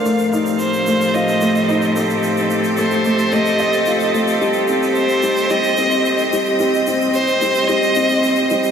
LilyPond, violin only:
\new Staff \with { instrumentName = "Violin" } { \time 4/4 \key f \mixolydian \tempo 4 = 110 r4 c''4 ees''4. r8 | r4 c''4 ees''4. r8 | r4 c''4 ees''4. r8 | r4 c''4 ees''4. r8 | }